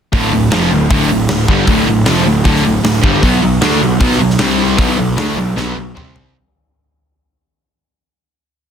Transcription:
0.13 D1 D2 A2 D3, kick, open hi-hat
0.30 D1 D2 A2
0.51 F1 F2 C3 F3, snare
0.71 D1 D2 A2
0.89 D1 D2 A2 D3, kick, open hi-hat
1.09 D1 D2 A2
1.29 D1 D2 A2, snare, open hi-hat
1.48 G1 G2 D3 G3, kick
1.67 D1 D2 A2 D3, kick, open hi-hat
1.86 D1 D2 A2
2.06 F1 F2 C3 F3, snare, open hi-hat
2.25 D1 D2 A2
2.44 D1 D2 A2 D3, kick, open hi-hat
2.55 snare
2.64 D1 D2 A2
2.83 D1 D2 A2, snare, open hi-hat
3.04 G1 G2 D3 G3, kick
3.23 B1 B2 F#3 B3, kick, open hi-hat
3.42 B1 B2 F#3
3.61 D2 D3 A3 D4, snare, open hi-hat
3.81 B1 B2 F#3
4.00 B1 B2 F#3 B3, kick, open hi-hat
4.11 snare
4.19 B1 B2 F#3
4.30 snare
4.39 C2 C3 G3 C4, snare, open hi-hat
4.77 B1 B2 F#3 B3, kick, open hi-hat
4.97 B1 B2 F#3
5.17 D2 D3 A3 D4, snare, open hi-hat
5.36 B1 B2 F#3
5.57 B1 B2 F#3 B3, snare
5.76 B1 B2 F#3
5.95 C2 C3 G3 C4, mid tom
6.16 floor tom

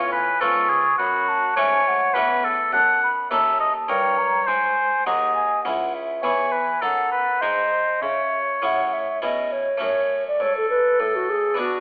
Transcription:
Already playing: A2 B3 C#4 F4 C#5 F5
0.13 B4 G#5
0.40 G#2 B3 C#4 F4 A4 C#6
0.70 G#4
0.98 F#2 F#4 B5
1.28 A5
1.56 G#2 A3 C#4 F#4 C#5 G#5
1.88 F#5
2.14 E2 A3 C#4 F#4 B4
2.45 A4
2.72 F#2 F#5 A5
3.03 B5
3.31 D#2 C#4 D#4 A4 E5 A5
3.60 D#5
3.88 G2 D#4 A#4 C#5 G5
4.18 A#5
4.47 G#2 G#3 C5 G#5
5.06 D#2 D#4 F#4 G#4 D#5 F#5
5.35 G#5
5.64 C#2 C#4 E4 G#4 F#5
5.94 E5
6.23 E2 B3 E4 G#4 C#5 G#5
6.52 B4
6.82 F#2 D#4 A4 F#5
7.12 B4
7.41 G#2 G#3 D#4 G#4 C5 D#5
8.02 C#3 C#5 E5
8.62 A2 C#4 E4 G#4 F#5
8.93 E5
9.22 B2 C#4 E4 G#4 D#5
9.52 C#5
9.78 A3 C#4 F#4
9.82 F#2 C#5
10.28 D5
10.40 G#2 A4 C#5
10.57 A4
10.70 B4
11.00 A2 A4
11.15 F#4
11.29 G#4
11.54 B3 D4 F#4
11.58 B2 D4 F#4

